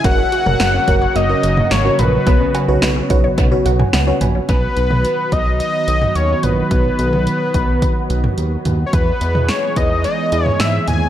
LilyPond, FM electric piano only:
\new Staff \with { instrumentName = "FM electric piano" } { \time 4/4 \key b \major \tempo 4 = 108 << { r1 | r2 r8 fis''16 gis''16 fis''8 gis''8 | r1 | r1 |
r1 | } \\ { <fis' ais' cis''>8 r16 <fis' ais' cis''>8 r16 <fis' ais' cis''>8 r16 <fis' ais' cis''>8. r16 <fis' ais' cis''>8 r16 | <fis' b' cis''>8 r16 <fis' b' cis''>8 r16 <fis' b' cis''>8 r16 <fis' b' cis''>8. r16 <fis' b' cis''>8 r16 | r1 | r1 |
r1 | } >> }